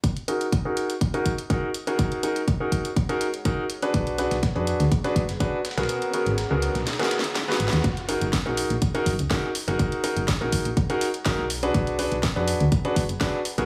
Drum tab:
HH |x-----x-----x-----x-----x-----------x-----x-----x-----x-----x-----x-----x-----------x-----x-----|x-----x-----x-----x-----x-----------x-----x-----x-----x-----x-----x-----x-----------x-----x-----|x-----x-----x-----x-----x-----x-----x-----x-----x-----x-----x-----x-----x-----------x--x--x--x--|x-----x-----x-----x-----x-----------x-----x-----x--x--x--x--x-----x-----x-----------x-----x-----|
SD |------------------------------------------------------------------------------------------------|------------------------------------------------------------------------------------------------|------------o-----o-----o-----------------o-----------o-----------o-----------------o--o--o--o--|------------------------o-----------------o-----o--o--o-oo--o---o-------o-----o-o-------o-------|
BD |o-----------------------o-----------------------o-----------o-----------o-----------------------|o-----------------------o-----------o-----------o-----------------------o-----------------------|o-----------------------o-----------------------o-----------o-----------o-----------------------|------------------------------------------------------------------------------------------------|

HH |x-----x-----o-----x-----x-----------o-----x-----x-----x-----o-----x-----x-----------o-----x-----|x-----x-----o-----x-----x-----------o-----x-----x-----x-----o-----x-----x-----------o-----x-----|x-----x-----o-----x-----x-----------o-----x-----x-----x-----o-----x-----x-----------o-----x-----|
SD |------------------------o-----------------------------------------------o-----------------------|------------------------o-----------------------------------------------o-----------------------|------------------------o-----------------------------------------------o-----------------------|
BD |o-----------------------o-----------------------o-----------o-----------o-----------------------|o-----------------------o-----------o-----------o-----------------------o-----------------------|o-----------------------o-----------------------o-----------o-----------o-----------------------|